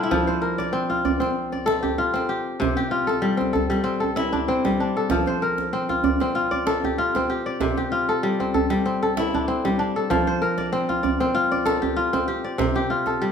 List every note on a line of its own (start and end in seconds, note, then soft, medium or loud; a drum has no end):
0.00 0.17 G3 medium
0.00 1.64 D4 medium
0.00 0.96 E4 medium
0.00 1.15 G4 medium
0.00 0.48 A4 medium
0.00 0.21 C5 medium
0.11 2.45 F3 medium
0.11 djembe slap medium
0.11 djembe bass medium
0.27 1.46 C5 medium
0.27 djembe tone medium
0.42 1.72 A#4 medium
0.58 1.04 D5 medium
0.58 djembe slap medium
0.73 1.20 C4 medium
0.90 1.98 F4 medium
0.90 djembe tone medium
1.05 1.52 D5 medium
1.05 djembe bass medium
1.20 2.13 C4 medium
1.20 djembe slap soft
1.52 2.63 D5 medium
1.52 djembe tone medium
1.66 2.98 A4 medium
1.66 djembe slap medium
1.83 2.29 G4 medium
1.83 djembe bass medium
1.98 2.91 F4 medium
2.14 3.37 C4 medium
2.14 djembe slap medium
2.29 2.76 G4 medium
2.60 4.94 C3 medium
2.60 djembe slap medium
2.60 djembe bass medium
2.77 4.18 G4 medium
2.77 djembe slap soft
2.77 djembe tone medium
2.91 4.22 F4 medium
3.07 3.53 A4 medium
3.07 djembe slap medium
3.22 3.69 G3 medium
3.37 3.83 C4 medium
3.37 djembe slap soft
3.37 djembe tone medium
3.53 4.00 A4 medium
3.53 djembe slap soft
3.53 djembe bass medium
3.70 4.64 G3 medium
3.70 djembe slap medium
3.84 4.48 C4 medium
3.84 djembe slap soft
4.00 4.96 A4 medium
4.00 djembe tone medium
4.16 5.17 E4 medium
4.16 djembe slap medium
4.33 4.80 D4 medium
4.33 djembe bass medium
4.48 5.73 C4 medium
4.65 5.16 G3 medium
4.65 djembe slap medium
4.65 djembe tone medium
4.80 6.48 D4 medium
4.97 5.48 A4 medium
5.10 7.45 F3 medium
5.10 djembe slap medium
5.10 djembe bass medium
5.26 6.46 C5 medium
5.26 djembe tone medium
5.42 6.73 A#4 medium
5.58 djembe slap medium
5.73 6.21 C4 medium
5.89 6.35 F4 medium
5.89 djembe tone medium
6.04 6.51 D5 medium
6.04 djembe bass medium
6.20 7.15 C4 medium
6.20 djembe slap medium
6.35 6.98 F4 medium
6.51 7.46 D5 medium
6.51 djembe tone medium
6.67 7.98 A4 medium
6.67 djembe slap medium
6.84 7.29 G4 medium
6.84 djembe bass medium
6.98 7.91 F4 medium
7.15 8.40 C4 medium
7.15 djembe slap medium
7.15 djembe tone medium
7.30 7.77 G4 medium
7.46 8.57 D5 medium
7.46 djembe slap soft
7.61 9.95 C3 medium
7.61 djembe slap medium
7.61 djembe bass medium
7.77 9.19 G4 medium
7.77 djembe tone medium
7.92 9.23 F4 medium
8.09 8.54 A4 medium
8.23 8.69 G3 medium
8.40 8.85 C4 medium
8.40 djembe tone medium
8.54 9.02 A4 medium
8.54 djembe bass medium
8.70 9.64 G3 medium
8.70 djembe slap medium
8.86 9.48 C4 medium
9.02 9.96 A4 medium
9.02 djembe tone soft
9.17 10.16 E4 medium
9.17 djembe slap medium
9.34 9.79 D4 medium
9.34 djembe bass medium
9.48 10.72 C4 medium
9.65 10.15 G3 medium
9.65 djembe slap medium
9.65 djembe tone medium
9.79 11.47 D4 medium
9.96 10.48 A4 medium
9.96 djembe slap soft
10.10 12.44 F3 medium
10.10 djembe slap medium
10.10 djembe bass medium
10.27 11.46 C5 medium
10.27 djembe tone medium
10.42 11.71 A#4 medium
10.58 11.03 D5 medium
10.58 djembe slap medium
10.72 11.20 C4 medium
10.89 11.34 F4 medium
10.89 djembe tone medium
11.03 11.51 D5 medium
11.03 djembe bass medium
11.20 12.13 C4 medium
11.20 djembe slap medium
11.35 11.96 F4 medium
11.52 12.44 D5 medium
11.52 djembe tone medium
11.65 12.97 A4 medium
11.65 djembe slap medium
11.82 12.27 G4 medium
11.82 djembe bass medium
11.96 12.90 F4 medium
12.13 13.32 C4 medium
12.13 djembe slap medium
12.13 djembe tone medium
12.28 12.75 G4 medium
12.44 13.32 D5 medium
12.44 djembe slap soft
12.58 13.32 C3 medium
12.58 djembe slap medium
12.58 djembe bass medium
12.75 13.32 G4 medium
12.75 djembe tone medium
12.90 13.32 F4 medium
13.06 13.32 A4 medium
13.06 djembe slap medium
13.22 13.32 G3 medium